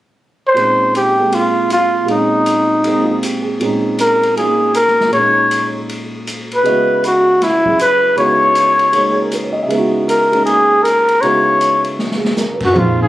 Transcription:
0.47 C5
0.54 A#2 G#3 C4 C#4, ride
0.59 D#4
0.95 G4, hi-hat pedal, ride
1.19 G#3 A#3 C4
1.32 F4, ride
1.70 F4, hi-hat pedal, ride
2.03 A#2 G#3
2.08 C4 C#4 D#4, ride
2.14 D#4
2.46 hi-hat pedal, ride
2.84 G#3 A#3 C4, ride
3.04 F4
3.23 G4, hi-hat pedal, ride
3.42 G#4
3.59 A#2 G#3 C4 C#4, ride
3.64 D#4
3.99 A#4, hi-hat pedal, ride
4.23 ride
4.36 A#3 C#4 D#4 F4 G#4, ride
4.74 A#4, hi-hat pedal, ride
4.88 snare
5.01 snare
5.08 A#2 G#3
5.13 A#3 C#4 C#5, ride
5.19 D#4
5.51 hi-hat pedal, ride
5.89 ride
6.27 hi-hat pedal, ride
6.52 B4, ride
6.63 C#3 G#3 B3 E4 D#5, ride
6.68 F#4
7.04 F#4, hi-hat pedal, ride
7.42 E4, snare, ride
7.65 F#3 C#4 E4 F#4 G#4, kick
7.79 B4, hi-hat pedal, ride
8.15 C#3 G#3 B3 D#4 E4 C#5, ride
8.20 F#4
8.55 hi-hat pedal, ride
8.79 ride
8.92 G#3 A#3 C#4 D#4, ride
9.12 G#4
9.22 A#4
9.32 B4, hi-hat pedal, ride
9.43 C#5
9.53 D#5
9.63 C#3 E5
9.68 G#3 B3, ride
9.73 D#4 E4
9.78 F#4
10.09 A#4, hi-hat pedal, ride
10.32 G#3 A#3 C#4 D#4, ride
10.46 G#4, ride
10.83 A#4, hi-hat pedal, ride
11.09 ride
11.21 C#3 G#3 B3 D#4 E4 F#4 C#5, ride
11.61 hi-hat pedal, ride
11.84 ride
11.99 snare
12.11 snare
12.17 G#4
12.25 snare
12.37 A#4, snare, hi-hat pedal
12.54 B4
12.60 F#2, kick, crash
12.65 F#4
12.72 A#1 F3 A#3 D#4 G#4 C5
12.77 F2 F4
13.01 G#2 G#4

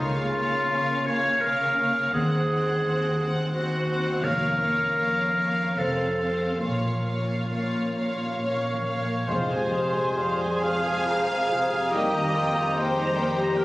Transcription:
Already playing: F3 F4
0.00 C#2 C#3 A#3 F4 C#5 F5
0.23 A#3
0.36 A#3 C#5 F5
0.47 C#4
0.70 C#3 A#3 A#4 C#5 F5
0.93 C#5
1.06 A#3 C#5 F5
1.17 F4
1.41 C#3 A#3 C#4 A#4 F5
1.45 C#5
1.66 A#3
1.79 A#3 C#5 F5
1.90 C#4
2.12 D#2 D#3 C4 G#4 F#5
2.17 C5
2.36 D#4
2.48 C4 C5 F#5
2.60 C4
2.84 D#2 C4 C5 F#5
3.07 F#4
3.19 C4 C5 F#5
3.29 C4
3.53 D#2 C4 D#4 F#4 C5 F#5
3.76 C4
3.87 C4 C5 F#5
3.99 D#4
4.21 F1 F2 F3 A#3 A#4 C#5 F5
4.48 C#4
4.59 A#3 C#5 F5
4.73 F4
4.97 F2 A#3 C#5 F5
5.25 F5
5.35 A#3 C#5 F5
5.50 A#4
5.76 F1 F2 F3 C4 A4 C5 F5
6.04 F4
6.16 C4 C5 F5
6.32 F4 C5
6.58 A#1 A#2 A#3 F4 C#5 F5
6.90 F3
7.02 A#3 C#5 F5
7.19 C#4
7.49 A#2 A#3 A#4 C#5 F5
7.81 C#5
7.97 A#3 C#5 F5
8.13 F4
8.43 A#2 A#3 C#4 C#5 F5
8.72 F3
8.84 A#3 C#5 F5
9.00 C#4
9.27 F2 F3 G#3 F4 C5 F5 C6
9.48 C3 G#3 G#4 G#5
9.70 F3 F4 G#4 C5 F5
9.92 G#3 G#4 C5 G#5
10.15 F3 G3 G#4 C5 F5
10.37 G#3 G#4 G#5
10.61 F3 C5 F5
10.84 G#3 G#4 G#5
11.06 F3 F4 A#4 C5 F5 A#5
11.27 G#3 C4 G#4 G#5
11.48 C3 F3 G#4 C5 F5
11.68 G#3 C4 G#4 G#5
11.90 F2 G3 A#3 D#4 G4 A#4 D#5 G5
12.11 D#3 G3 G4 A#5
12.33 A#3 D#4 F4 A#4 G5
12.53 G3 G4 A#4 A#5
12.74 G#3 A#3 D#4 A#4 C5 D#5 G5
12.94 G3 G4 G5 A#5
13.14 G3 A#3 A#4 G5
13.35 G3 G4 A#5
13.53 A#3 C4 D#4 G4 A#4
13.57 A#4 G5

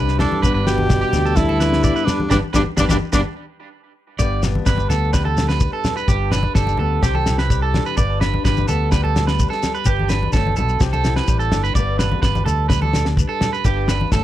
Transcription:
Already playing: C2 C3 G3 D4 G4 B4
0.08 snare, shekere
0.19 G2 D4 E4 A4, snare, low conga
0.32 high conga
0.42 G1 G2 G3 B3 D4 B4, kick, shekere
0.54 G1 B4
0.66 B2 B3 G4, snare, shekere
0.78 high conga
0.89 G3, kick, snare, low conga, shekere
1.01 G4, shekere
1.13 D2 D4, snare, high conga, low conga, shekere
1.26 A4, shekere
1.36 G2 D4 E4, kick, snare, low conga, shekere
1.49 A4, high conga
1.60 D3 B4, snare, shekere
1.73 snare
1.84 B3 D5, kick, shekere
1.96 B4, shekere
2.05 G2 D4, snare, low conga, shekere
2.09 D4
2.20 high conga
2.30 G1 G2 G3 B3 D4 G4 B4, kick, snare, high conga, shekere
2.53 G1 G2 G3 B3 D4 G4 B4, kick, snare, high conga, shekere
2.77 G1 G2 G3 B3 D4 G4 B4, kick, snare, high conga, shekere
2.89 G1 G2 G3 B3 D4 G4 B4, kick, snare, high conga, shekere
3.12 G1 G2 G3 B3 D4 G4 B4, kick, snare, high conga, shekere
4.19 G1 G2 G3 B3 B4 D5, muted steel-string acoustic guitar stroke, kick, shekere
4.43 D4, snare, low conga, shekere
4.55 high conga
4.66 G1 G3 B4, kick, snare, shekere
4.78 high conga, shekere
4.90 D2 B3 A4, snare, low conga, shekere
5.13 G3 B4, kick, snare, shekere
5.25 A4, high conga
5.37 muted steel-string acoustic guitar stroke, snare, low conga, shekere
5.49 B4, snare, shekere
5.60 B4, kick, shekere
5.73 A4
5.84 D4, snare, high conga, low conga, shekere
5.97 B4, shekere
6.08 G1 G2 G4 B4, kick, shekere
6.32 D4 B4, snare, low conga, shekere
6.43 high conga
6.55 G1 G3 A4, kick, snare, shekere
6.67 high conga, shekere
6.78 D2 B3 A4, low conga
7.02 C2 C3 G4, kick, snare, shekere
7.15 A4, high conga
7.26 E4, snare, low conga, shekere
7.38 B4, snare, shekere
7.50 G3, kick, shekere
7.62 A4
7.74 D4, snare, high conga, low conga
7.86 B4, shekere
7.97 G1 G2 B4 D5, kick, shekere
8.21 D4 B4, snare, low conga, shekere
8.34 high conga
8.45 G1 G3 B4, kick, snare, shekere
8.57 high conga, shekere
8.68 D2 B3 A4, low conga, shekere
8.92 G3 B4, kick, snare, shekere
9.04 A4, high conga
9.16 D4, snare, low conga, shekere
9.27 B4, snare, shekere
9.39 B4, kick, shekere
9.50 A4, snare
9.63 D4, snare, high conga, shekere
9.75 B4, shekere
9.85 G1 G2 G4 B4, kick, shekere
10.00 high conga
10.09 D4 B4, snare, low conga, shekere
10.23 high conga
10.33 G1 A2 A4, kick, snare, shekere
10.47 high conga
10.56 B1 B2 A4, low conga, shekere
10.69 shekere
10.80 C2 C3 G4, muted clean electric guitar stroke, kick, snare, shekere
10.93 A4, high conga, shekere
11.04 E4, snare, low conga, shekere
11.16 B4, snare, shekere
11.28 A1 G3, kick, shekere
11.39 A4, shekere
11.52 G1 D4, snare, low conga, shekere
11.64 B4, shekere
11.75 G1 G2 G3 B3 D4 D5, kick, shekere
11.79 B4
11.99 D4 B4, snare, low conga, shekere
12.12 high conga
12.22 G1 G3 B4, kick, snare, shekere
12.35 high conga, shekere
12.45 D2 A4, muted steel-string acoustic guitar stroke, low conga, shekere
12.69 G3 B4, kick, snare, shekere
12.82 A4, high conga
12.93 D4, snare, low conga, shekere
13.05 snare, shekere
13.17 B4, kick, shekere
13.29 A4
13.41 D4, snare, high conga, low conga, shekere
13.53 B4, shekere
13.65 G1 G2 G4 B4, kick, shekere
13.88 D4 B4, snare, low conga, shekere
14.01 high conga
14.12 G1 A2 A4, kick, snare, shekere

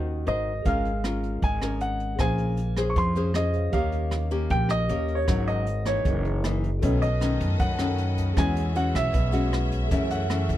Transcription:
Already playing: D#2 D#3 C#4 D#4 F#4 A#4 D#5
0.26 G#1 D#4 F#4 A#4 C5 D#5
0.62 G#1 G#3 C#4 F4 G#4 A#4 F5, kick, closed hi-hat
0.67 D#5 F6
0.85 closed hi-hat
1.04 C#4 F4 A#4, cross-stick, closed hi-hat
1.23 closed hi-hat
1.42 G#1 G#3 G#5, kick, closed hi-hat
1.62 C#4 A#4, cross-stick, closed hi-hat
1.81 F#5, closed hi-hat
2.00 closed hi-hat
2.16 A#1 C#4 G#4 C5, kick, cross-stick, closed hi-hat
2.20 A#3 G#4 C5 F5 G#5
2.38 closed hi-hat
2.57 closed hi-hat
2.77 C#4 G#4 C5, cross-stick, closed hi-hat
2.90 C#6
2.96 F2 F3 C6, kick, closed hi-hat
3.15 C#4 G#4 C5, closed hi-hat
3.34 C#4 G#4 C5 D#5, cross-stick, closed hi-hat
3.53 G#4 C5 C#5 F5, closed hi-hat
3.70 D#2 D#3 A#3 C#4 G4 A#4 F5, kick, closed hi-hat
3.75 C#5 F5
3.92 closed hi-hat
4.11 cross-stick, closed hi-hat
4.31 A#3 C#4 G4, closed hi-hat
4.50 A#1 A#2 G5, kick, closed hi-hat
4.69 D#5, cross-stick, closed hi-hat
4.88 D#2 A#3 C#4 G4 A#4 C#5 F5, closed hi-hat
5.08 closed hi-hat
5.15 C#5
5.25 G#1 G#2 F#3 C#4 D#4 F#4 A#4 C#5, kick, cross-stick, closed hi-hat
5.30 D#5
5.47 D#5, closed hi-hat
5.67 closed hi-hat
5.86 E3 A#3 D#4 C#5, cross-stick, closed hi-hat
6.05 F#1 F#2 G#4 A#4 D#5, kick, closed hi-hat
6.25 closed hi-hat
6.44 E3 A#3 D#4, cross-stick, closed hi-hat
6.64 closed hi-hat
6.80 B1 B2 D#3 A3 C#4 F#4 A4 C#5 D#5, kick, closed hi-hat
6.84 B4 D#5
7.02 D#5, closed hi-hat
7.21 D#3 A3 C#4, cross-stick, closed hi-hat
7.40 F#2, kick, closed hi-hat
7.59 F#2 F#5, kick, closed hi-hat
7.79 D#3 A3 C#4, cross-stick, closed hi-hat
7.98 closed hi-hat
8.18 kick, closed hi-hat
8.34 E2 E3 G#3 C#4 F#4 G#4 B4 C#5 E5, kick, cross-stick, closed hi-hat
8.38 F#5 G#5
8.57 closed hi-hat
8.75 G#3 C#4 F#4 F#5, closed hi-hat
8.95 B1 E5, kick, cross-stick, closed hi-hat
9.13 B1 B2, kick, closed hi-hat
9.32 G#3 C#4 F#4, closed hi-hat
9.53 cross-stick, closed hi-hat
9.72 kick, closed hi-hat
9.88 F#2 E3 A3 F#4 G#4 A4 C#5, kick, closed hi-hat
9.92 C#4 E5
10.11 F#5, closed hi-hat
10.30 E3 A3 C#4, cross-stick, closed hi-hat
10.49 C#2, kick, closed hi-hat

